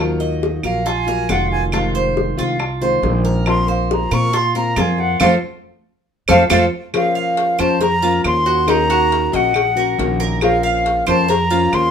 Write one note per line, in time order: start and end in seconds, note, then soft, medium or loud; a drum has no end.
0.00 0.58 D#2 medium
0.00 0.63 D#3 medium
0.00 0.63 F#3 medium
0.00 0.63 A#3 medium
0.00 0.63 F4 medium
0.00 0.19 A#4 medium
0.20 0.62 D#5 medium
0.43 high bongo medium
0.63 1.25 A#1 medium
0.63 0.84 F#3 medium
0.63 0.84 A#3 medium
0.63 0.84 F4 medium
0.63 0.85 A#4 medium
0.63 0.90 F5 medium
0.63 high bongo soft
0.63 claves medium
0.85 1.07 F4 medium
0.85 1.33 G#5 loud
0.85 muted nylon-string guitar stroke medium
0.85 high bongo medium
1.07 1.28 F#3 medium
1.07 1.28 A#3 medium
1.07 1.28 F4 medium
1.07 1.29 A#4 medium
1.07 high bongo soft
1.28 2.32 F1 loud
1.28 1.71 D#3 medium
1.28 1.72 F#3 soft
1.28 1.72 A#3 medium
1.28 1.71 F4 medium
1.28 1.72 F4 medium
1.28 1.51 F#5 medium
1.28 high bongo soft
1.28 low bongo medium
1.28 claves medium
1.52 1.64 G#5 loud
1.52 high bongo soft
1.72 2.37 C3 medium
1.72 2.37 D#3 medium
1.72 2.37 G#3 medium
1.72 2.38 C4 medium
1.72 1.94 F4 medium
1.72 2.37 F4 medium
1.72 high bongo medium
1.72 claves medium
1.95 2.37 C5 medium
2.17 high bongo medium
2.37 2.99 C2 medium
2.37 2.59 D#3 medium
2.37 2.59 G#3 medium
2.37 2.59 C4 medium
2.37 2.59 F4 medium
2.37 2.80 F4 medium
2.37 high bongo soft
2.60 muted nylon-string guitar stroke medium
2.60 high bongo medium
2.60 claves medium
2.81 3.01 D#3 medium
2.81 3.02 G#3 medium
2.81 3.03 C4 medium
2.81 3.02 F4 medium
2.81 3.24 C5 medium
2.81 high bongo soft
3.02 4.05 A#1 loud
3.02 3.45 D#3 medium
3.02 3.46 G#3 medium
3.02 3.46 C4 medium
3.02 3.46 F4 medium
3.02 high bongo soft
3.02 low bongo medium
3.25 3.67 A#4 medium
3.25 high bongo soft
3.46 4.33 F3 medium
3.46 4.11 A#3 medium
3.46 4.12 C4 medium
3.46 4.11 F4 medium
3.46 3.68 C6 loud
3.46 high bongo medium
3.46 claves medium
3.68 4.10 C5 medium
3.68 3.95 F5 medium
3.91 4.15 A#5 medium
3.91 high bongo medium
4.11 4.73 A#2 loud
4.11 4.32 A#3 medium
4.11 4.32 C4 medium
4.11 4.32 F4 medium
4.11 4.33 A#4 medium
4.11 4.38 C#6 loud
4.11 high bongo soft
4.11 claves medium
4.33 4.54 F4 medium
4.33 4.56 C6 medium
4.33 muted nylon-string guitar stroke medium
4.33 high bongo medium
4.55 4.76 A#3 medium
4.55 4.77 C4 medium
4.55 4.76 F4 medium
4.55 4.76 A#4 medium
4.55 4.82 A#5 medium
4.55 high bongo soft
4.76 5.17 F2 loud
4.76 5.19 F3 medium
4.76 5.20 A#3 medium
4.76 5.19 C4 medium
4.76 5.19 F4 medium
4.76 5.20 F4 medium
4.76 high bongo soft
4.76 low bongo medium
4.76 claves medium
4.81 5.01 G#5 medium
4.98 5.20 F#5 loud
4.98 high bongo soft
5.20 5.37 F2 loud
5.20 5.35 F3 loud
5.20 5.34 A3 loud
5.20 5.34 C4 loud
5.20 5.34 F4 medium
5.20 5.34 A4 medium
5.20 5.34 C5 medium
5.20 5.35 F5 loud
5.20 low bongo loud
5.20 claves loud
6.28 6.45 F2 loud
6.28 6.43 F3 loud
6.28 6.43 A3 loud
6.28 6.43 C4 medium
6.28 6.43 F4 medium
6.28 6.43 A4 loud
6.28 6.43 C5 loud
6.28 6.44 F5 loud
6.28 low bongo loud
6.28 claves loud
6.50 6.67 F2 loud
6.50 6.65 F3 loud
6.50 6.65 A3 loud
6.50 6.65 C4 medium
6.50 6.64 F4 loud
6.50 6.64 A4 loud
6.50 6.64 C5 medium
6.50 6.65 F5 medium
6.50 low bongo medium
6.50 claves loud
6.94 7.58 F3 medium
6.94 7.61 A#3 medium
6.94 7.60 C#4 medium
6.94 7.59 F4 medium
6.94 7.58 C5 medium
6.94 7.15 F5 loud
6.94 cowbell loud
6.94 claves medium
7.15 7.58 F5 medium
7.15 7.62 F5 loud
7.37 cowbell medium
7.58 8.20 F2 loud
7.58 7.80 A#3 medium
7.58 7.80 C#4 medium
7.58 7.80 F4 medium
7.58 7.80 C5 medium
7.58 7.81 A5 loud
7.58 cowbell medium
7.58 claves medium
7.81 8.02 A#4 medium
7.81 8.22 A#5 loud
7.81 muted nylon-string guitar stroke medium
7.81 cowbell loud
8.02 8.23 A#3 medium
8.02 8.24 C#4 medium
8.02 8.45 F4 medium
8.02 8.24 F4 medium
8.02 8.23 C5 medium
8.24 9.27 D#2 loud
8.24 8.66 A#3 medium
8.24 8.67 C#4 medium
8.24 8.68 F4 medium
8.24 8.68 C5 medium
8.24 8.72 C6 loud
8.24 cowbell medium
8.24 claves medium
8.46 8.67 F#4 medium
8.67 9.32 D#3 medium
8.67 9.34 A#3 medium
8.67 9.33 C#4 medium
8.67 8.89 D#4 medium
8.67 9.31 F#4 medium
8.67 9.37 A#5 loud
8.67 cowbell loud
8.67 claves medium
8.90 9.32 F#4 medium
8.90 cowbell medium
9.12 cowbell medium
9.32 9.94 A#1 loud
9.32 9.54 A#3 medium
9.32 9.54 C#4 medium
9.32 9.53 F#4 medium
9.32 9.75 D#5 medium
9.32 10.21 F#5 loud
9.32 cowbell medium
9.54 muted nylon-string guitar stroke medium
9.54 cowbell medium
9.54 claves medium
9.76 9.97 A#3 medium
9.76 9.97 C#4 medium
9.76 9.97 F#4 medium
9.76 10.19 A#4 medium
9.98 11.01 A#1 loud
9.98 10.41 D#3 medium
9.98 10.41 A#3 medium
9.98 10.41 C#4 medium
9.98 10.42 F#4 medium
9.98 cowbell medium
10.20 10.62 A#4 medium
10.41 11.06 F3 medium
10.41 11.08 A#3 medium
10.41 11.08 C#4 medium
10.41 11.07 F4 medium
10.41 11.06 C5 medium
10.41 10.63 F5 loud
10.41 cowbell loud
10.41 claves medium
10.63 11.06 F5 medium
10.63 11.05 F5 medium
10.86 cowbell medium
11.07 11.69 F2 loud
11.07 11.28 A#3 medium
11.07 11.28 C#4 medium
11.07 11.28 F4 medium
11.07 11.28 C5 medium
11.07 11.31 A5 loud
11.07 cowbell medium
11.07 claves medium
11.28 11.50 A#4 medium
11.28 11.76 A#5 loud
11.28 muted nylon-string guitar stroke medium
11.28 cowbell medium
11.51 11.72 A#3 medium
11.51 11.72 C#4 medium
11.51 11.91 F4 medium
11.51 11.72 F4 medium
11.51 11.72 C5 medium
11.72 11.91 D#2 loud
11.72 11.91 A#3 medium
11.72 11.91 C#4 medium
11.72 11.91 F4 medium
11.72 11.91 C5 medium
11.72 11.91 C6 loud
11.72 cowbell medium
11.72 claves medium